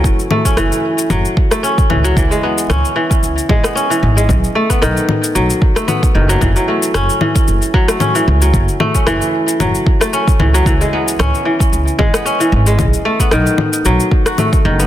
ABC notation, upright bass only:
X:1
M:4/4
L:1/8
Q:"Swing 16ths" 1/4=113
K:F#dor
V:1 name="Upright bass" clef=bass
F,,, z F,,, z F,,, z2 C,, | C,, z C,, z C,, z2 G,,, | B,,, z B,,, z B,,, z2 F,,, | F,,, z F,,, z F,,, z2 C,, |
F,,, z F,,, z F,,, z2 C,, | C,, z C,, z C,, z2 G,,, | B,,, z B,,, z B,,, z2 F,,, |]